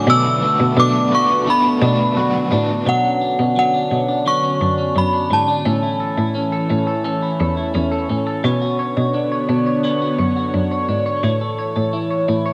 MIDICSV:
0, 0, Header, 1, 6, 480
1, 0, Start_track
1, 0, Key_signature, 2, "minor"
1, 0, Tempo, 697674
1, 52, Time_signature, 4, 2, 24, 8
1, 8621, End_track
2, 0, Start_track
2, 0, Title_t, "Synth bell"
2, 0, Program_c, 0, 98
2, 68, Note_on_c, 0, 88, 112
2, 548, Note_on_c, 0, 86, 105
2, 554, Note_off_c, 0, 88, 0
2, 787, Note_off_c, 0, 86, 0
2, 789, Note_on_c, 0, 85, 84
2, 1027, Note_off_c, 0, 85, 0
2, 1032, Note_on_c, 0, 83, 81
2, 1714, Note_off_c, 0, 83, 0
2, 1986, Note_on_c, 0, 78, 72
2, 2460, Note_off_c, 0, 78, 0
2, 2469, Note_on_c, 0, 78, 75
2, 2941, Note_on_c, 0, 85, 88
2, 2954, Note_off_c, 0, 78, 0
2, 3389, Note_off_c, 0, 85, 0
2, 3425, Note_on_c, 0, 83, 70
2, 3642, Note_off_c, 0, 83, 0
2, 3668, Note_on_c, 0, 81, 70
2, 4592, Note_off_c, 0, 81, 0
2, 8621, End_track
3, 0, Start_track
3, 0, Title_t, "Clean electric guitar"
3, 0, Program_c, 1, 27
3, 0, Note_on_c, 1, 61, 65
3, 0, Note_on_c, 1, 66, 62
3, 51, Note_on_c, 1, 57, 82
3, 99, Note_off_c, 1, 61, 0
3, 282, Note_off_c, 1, 57, 0
3, 290, Note_on_c, 1, 57, 57
3, 531, Note_on_c, 1, 62, 67
3, 768, Note_off_c, 1, 66, 0
3, 771, Note_on_c, 1, 66, 64
3, 1005, Note_off_c, 1, 57, 0
3, 1013, Note_on_c, 1, 57, 70
3, 1251, Note_off_c, 1, 62, 0
3, 1254, Note_on_c, 1, 62, 66
3, 1489, Note_off_c, 1, 66, 0
3, 1491, Note_on_c, 1, 66, 66
3, 1729, Note_off_c, 1, 62, 0
3, 1732, Note_on_c, 1, 62, 61
3, 1972, Note_on_c, 1, 54, 67
3, 1973, Note_off_c, 1, 62, 0
3, 1976, Note_on_c, 1, 62, 55
3, 2020, Note_off_c, 1, 57, 0
3, 2092, Note_on_c, 1, 61, 46
3, 2202, Note_off_c, 1, 62, 0
3, 2210, Note_on_c, 1, 62, 53
3, 2329, Note_off_c, 1, 61, 0
3, 2332, Note_on_c, 1, 61, 40
3, 2442, Note_off_c, 1, 54, 0
3, 2451, Note_on_c, 1, 54, 56
3, 2563, Note_off_c, 1, 62, 0
3, 2571, Note_on_c, 1, 62, 52
3, 2683, Note_off_c, 1, 54, 0
3, 2691, Note_on_c, 1, 54, 50
3, 2801, Note_off_c, 1, 62, 0
3, 2810, Note_on_c, 1, 62, 59
3, 2921, Note_off_c, 1, 54, 0
3, 2926, Note_off_c, 1, 62, 0
3, 2930, Note_on_c, 1, 54, 68
3, 2934, Note_on_c, 1, 62, 55
3, 3048, Note_off_c, 1, 61, 0
3, 3051, Note_on_c, 1, 61, 47
3, 3163, Note_off_c, 1, 62, 0
3, 3171, Note_on_c, 1, 62, 58
3, 3286, Note_off_c, 1, 61, 0
3, 3289, Note_on_c, 1, 61, 49
3, 3401, Note_off_c, 1, 54, 0
3, 3409, Note_on_c, 1, 54, 53
3, 3521, Note_off_c, 1, 62, 0
3, 3529, Note_on_c, 1, 62, 57
3, 3641, Note_off_c, 1, 54, 0
3, 3649, Note_on_c, 1, 54, 50
3, 3762, Note_off_c, 1, 62, 0
3, 3770, Note_on_c, 1, 62, 57
3, 3886, Note_off_c, 1, 61, 0
3, 3889, Note_on_c, 1, 61, 63
3, 3891, Note_off_c, 1, 66, 0
3, 3893, Note_on_c, 1, 69, 58
3, 3938, Note_off_c, 1, 54, 0
3, 3939, Note_off_c, 1, 62, 0
3, 4009, Note_on_c, 1, 64, 53
3, 4121, Note_off_c, 1, 69, 0
3, 4130, Note_on_c, 1, 69, 55
3, 4239, Note_off_c, 1, 64, 0
3, 4248, Note_on_c, 1, 64, 44
3, 4365, Note_off_c, 1, 61, 0
3, 4367, Note_on_c, 1, 61, 55
3, 4480, Note_off_c, 1, 69, 0
3, 4488, Note_on_c, 1, 69, 55
3, 4604, Note_off_c, 1, 61, 0
3, 4607, Note_on_c, 1, 61, 51
3, 4719, Note_off_c, 1, 69, 0
3, 4727, Note_on_c, 1, 69, 52
3, 4843, Note_off_c, 1, 69, 0
3, 4844, Note_off_c, 1, 61, 0
3, 4847, Note_on_c, 1, 61, 71
3, 4851, Note_on_c, 1, 69, 59
3, 4961, Note_off_c, 1, 64, 0
3, 4969, Note_on_c, 1, 64, 50
3, 5080, Note_off_c, 1, 69, 0
3, 5088, Note_on_c, 1, 69, 58
3, 5201, Note_off_c, 1, 64, 0
3, 5209, Note_on_c, 1, 64, 48
3, 5323, Note_off_c, 1, 61, 0
3, 5326, Note_on_c, 1, 61, 53
3, 5438, Note_off_c, 1, 69, 0
3, 5447, Note_on_c, 1, 69, 59
3, 5566, Note_off_c, 1, 61, 0
3, 5568, Note_on_c, 1, 61, 53
3, 5680, Note_off_c, 1, 69, 0
3, 5688, Note_on_c, 1, 69, 53
3, 5809, Note_on_c, 1, 59, 58
3, 5810, Note_off_c, 1, 69, 0
3, 5812, Note_on_c, 1, 73, 54
3, 5858, Note_off_c, 1, 64, 0
3, 5928, Note_on_c, 1, 66, 49
3, 6045, Note_off_c, 1, 73, 0
3, 6048, Note_on_c, 1, 73, 55
3, 6162, Note_off_c, 1, 66, 0
3, 6170, Note_on_c, 1, 66, 43
3, 6287, Note_off_c, 1, 61, 0
3, 6290, Note_on_c, 1, 62, 59
3, 6408, Note_off_c, 1, 73, 0
3, 6411, Note_on_c, 1, 73, 50
3, 6522, Note_off_c, 1, 62, 0
3, 6530, Note_on_c, 1, 62, 49
3, 6648, Note_off_c, 1, 73, 0
3, 6651, Note_on_c, 1, 73, 57
3, 6762, Note_off_c, 1, 59, 0
3, 6770, Note_on_c, 1, 59, 66
3, 6772, Note_off_c, 1, 73, 0
3, 6775, Note_on_c, 1, 73, 57
3, 6884, Note_off_c, 1, 66, 0
3, 6892, Note_on_c, 1, 66, 49
3, 7009, Note_off_c, 1, 73, 0
3, 7011, Note_on_c, 1, 73, 63
3, 7123, Note_off_c, 1, 66, 0
3, 7131, Note_on_c, 1, 66, 49
3, 7241, Note_off_c, 1, 62, 0
3, 7249, Note_on_c, 1, 62, 54
3, 7368, Note_off_c, 1, 73, 0
3, 7371, Note_on_c, 1, 73, 55
3, 7481, Note_off_c, 1, 62, 0
3, 7489, Note_on_c, 1, 62, 50
3, 7606, Note_off_c, 1, 73, 0
3, 7609, Note_on_c, 1, 73, 56
3, 7726, Note_off_c, 1, 59, 0
3, 7729, Note_on_c, 1, 57, 63
3, 7731, Note_off_c, 1, 73, 0
3, 7733, Note_on_c, 1, 73, 49
3, 7778, Note_off_c, 1, 62, 0
3, 7779, Note_off_c, 1, 66, 0
3, 7850, Note_on_c, 1, 69, 45
3, 7968, Note_off_c, 1, 73, 0
3, 7971, Note_on_c, 1, 73, 52
3, 8079, Note_off_c, 1, 69, 0
3, 8088, Note_on_c, 1, 69, 42
3, 8208, Note_on_c, 1, 64, 58
3, 8325, Note_off_c, 1, 73, 0
3, 8328, Note_on_c, 1, 73, 54
3, 8441, Note_off_c, 1, 64, 0
3, 8450, Note_on_c, 1, 64, 47
3, 8567, Note_off_c, 1, 73, 0
3, 8570, Note_on_c, 1, 73, 59
3, 8621, Note_off_c, 1, 57, 0
3, 8621, Note_off_c, 1, 64, 0
3, 8621, Note_off_c, 1, 69, 0
3, 8621, Note_off_c, 1, 73, 0
3, 8621, End_track
4, 0, Start_track
4, 0, Title_t, "Overdriven electric guitar"
4, 0, Program_c, 2, 29
4, 51, Note_on_c, 2, 47, 78
4, 55, Note_on_c, 2, 54, 73
4, 57, Note_on_c, 2, 57, 90
4, 61, Note_on_c, 2, 62, 80
4, 63, Note_on_c, 2, 66, 77
4, 66, Note_on_c, 2, 71, 92
4, 282, Note_off_c, 2, 71, 0
4, 291, Note_off_c, 2, 47, 0
4, 291, Note_off_c, 2, 66, 0
4, 291, Note_on_c, 2, 71, 59
4, 293, Note_off_c, 2, 54, 0
4, 294, Note_off_c, 2, 57, 0
4, 296, Note_off_c, 2, 62, 0
4, 300, Note_on_c, 2, 66, 54
4, 305, Note_on_c, 2, 62, 48
4, 312, Note_on_c, 2, 57, 45
4, 529, Note_off_c, 2, 57, 0
4, 531, Note_off_c, 2, 71, 0
4, 531, Note_on_c, 2, 47, 73
4, 532, Note_off_c, 2, 62, 0
4, 533, Note_on_c, 2, 54, 76
4, 536, Note_off_c, 2, 66, 0
4, 538, Note_on_c, 2, 57, 82
4, 540, Note_on_c, 2, 62, 76
4, 544, Note_on_c, 2, 66, 85
4, 544, Note_on_c, 2, 71, 96
4, 757, Note_off_c, 2, 71, 0
4, 765, Note_off_c, 2, 66, 0
4, 766, Note_on_c, 2, 71, 59
4, 771, Note_off_c, 2, 47, 0
4, 771, Note_off_c, 2, 62, 0
4, 772, Note_off_c, 2, 54, 0
4, 773, Note_on_c, 2, 66, 49
4, 775, Note_off_c, 2, 57, 0
4, 780, Note_on_c, 2, 62, 45
4, 786, Note_on_c, 2, 57, 44
4, 1000, Note_off_c, 2, 57, 0
4, 1007, Note_off_c, 2, 62, 0
4, 1008, Note_on_c, 2, 57, 55
4, 1009, Note_off_c, 2, 71, 0
4, 1012, Note_off_c, 2, 66, 0
4, 1015, Note_on_c, 2, 62, 59
4, 1023, Note_on_c, 2, 66, 61
4, 1030, Note_on_c, 2, 71, 67
4, 1238, Note_off_c, 2, 71, 0
4, 1247, Note_on_c, 2, 71, 50
4, 1248, Note_off_c, 2, 66, 0
4, 1250, Note_off_c, 2, 57, 0
4, 1254, Note_off_c, 2, 62, 0
4, 1256, Note_on_c, 2, 66, 49
4, 1263, Note_on_c, 2, 62, 49
4, 1270, Note_on_c, 2, 57, 42
4, 1486, Note_off_c, 2, 57, 0
4, 1486, Note_on_c, 2, 47, 78
4, 1487, Note_off_c, 2, 62, 0
4, 1489, Note_off_c, 2, 71, 0
4, 1489, Note_on_c, 2, 54, 83
4, 1491, Note_off_c, 2, 66, 0
4, 1494, Note_on_c, 2, 57, 78
4, 1495, Note_on_c, 2, 62, 76
4, 1499, Note_on_c, 2, 66, 88
4, 1502, Note_on_c, 2, 71, 80
4, 1719, Note_off_c, 2, 71, 0
4, 1726, Note_off_c, 2, 66, 0
4, 1727, Note_on_c, 2, 71, 59
4, 1729, Note_off_c, 2, 47, 0
4, 1730, Note_off_c, 2, 54, 0
4, 1733, Note_off_c, 2, 57, 0
4, 1733, Note_off_c, 2, 62, 0
4, 1735, Note_on_c, 2, 66, 60
4, 1742, Note_on_c, 2, 62, 54
4, 1747, Note_on_c, 2, 57, 51
4, 1969, Note_off_c, 2, 71, 0
4, 1973, Note_off_c, 2, 66, 0
4, 1977, Note_off_c, 2, 62, 0
4, 1980, Note_off_c, 2, 57, 0
4, 8621, End_track
5, 0, Start_track
5, 0, Title_t, "Analog synth pad"
5, 0, Program_c, 3, 89
5, 0, Note_on_c, 3, 50, 82
5, 50, Note_on_c, 3, 57, 71
5, 51, Note_on_c, 3, 59, 90
5, 1942, Note_off_c, 3, 50, 0
5, 1952, Note_off_c, 3, 57, 0
5, 1952, Note_off_c, 3, 59, 0
5, 1973, Note_on_c, 3, 59, 62
5, 1974, Note_on_c, 3, 50, 67
5, 1976, Note_on_c, 3, 73, 80
5, 3873, Note_off_c, 3, 59, 0
5, 3874, Note_off_c, 3, 50, 0
5, 3895, Note_on_c, 3, 57, 61
5, 3896, Note_on_c, 3, 52, 67
5, 5794, Note_off_c, 3, 52, 0
5, 5794, Note_off_c, 3, 57, 0
5, 5807, Note_on_c, 3, 50, 75
5, 5807, Note_on_c, 3, 59, 68
5, 7710, Note_off_c, 3, 50, 0
5, 7710, Note_off_c, 3, 59, 0
5, 7735, Note_on_c, 3, 52, 72
5, 7737, Note_on_c, 3, 57, 64
5, 8621, Note_off_c, 3, 52, 0
5, 8621, Note_off_c, 3, 57, 0
5, 8621, Note_off_c, 3, 73, 0
5, 8621, End_track
6, 0, Start_track
6, 0, Title_t, "Cello"
6, 0, Program_c, 4, 42
6, 51, Note_on_c, 4, 47, 104
6, 393, Note_off_c, 4, 47, 0
6, 412, Note_on_c, 4, 47, 82
6, 526, Note_off_c, 4, 47, 0
6, 531, Note_on_c, 4, 47, 93
6, 1224, Note_off_c, 4, 47, 0
6, 1252, Note_on_c, 4, 47, 105
6, 1708, Note_off_c, 4, 47, 0
6, 1733, Note_on_c, 4, 45, 78
6, 1960, Note_off_c, 4, 45, 0
6, 1974, Note_on_c, 4, 47, 81
6, 2315, Note_off_c, 4, 47, 0
6, 2332, Note_on_c, 4, 47, 69
6, 2674, Note_off_c, 4, 47, 0
6, 2693, Note_on_c, 4, 47, 70
6, 3148, Note_off_c, 4, 47, 0
6, 3172, Note_on_c, 4, 42, 80
6, 3400, Note_off_c, 4, 42, 0
6, 3413, Note_on_c, 4, 42, 78
6, 3640, Note_off_c, 4, 42, 0
6, 3652, Note_on_c, 4, 44, 68
6, 3880, Note_off_c, 4, 44, 0
6, 3891, Note_on_c, 4, 45, 86
6, 4233, Note_off_c, 4, 45, 0
6, 4250, Note_on_c, 4, 45, 77
6, 4593, Note_off_c, 4, 45, 0
6, 4613, Note_on_c, 4, 45, 78
6, 5068, Note_off_c, 4, 45, 0
6, 5091, Note_on_c, 4, 40, 78
6, 5319, Note_off_c, 4, 40, 0
6, 5331, Note_on_c, 4, 40, 75
6, 5559, Note_off_c, 4, 40, 0
6, 5571, Note_on_c, 4, 45, 62
6, 5799, Note_off_c, 4, 45, 0
6, 5812, Note_on_c, 4, 47, 94
6, 6154, Note_off_c, 4, 47, 0
6, 6172, Note_on_c, 4, 47, 80
6, 6514, Note_off_c, 4, 47, 0
6, 6530, Note_on_c, 4, 47, 74
6, 6987, Note_off_c, 4, 47, 0
6, 7011, Note_on_c, 4, 42, 73
6, 7239, Note_off_c, 4, 42, 0
6, 7252, Note_on_c, 4, 42, 72
6, 7480, Note_off_c, 4, 42, 0
6, 7492, Note_on_c, 4, 44, 67
6, 7720, Note_off_c, 4, 44, 0
6, 7731, Note_on_c, 4, 45, 85
6, 8073, Note_off_c, 4, 45, 0
6, 8092, Note_on_c, 4, 45, 67
6, 8434, Note_off_c, 4, 45, 0
6, 8453, Note_on_c, 4, 45, 76
6, 8621, Note_off_c, 4, 45, 0
6, 8621, End_track
0, 0, End_of_file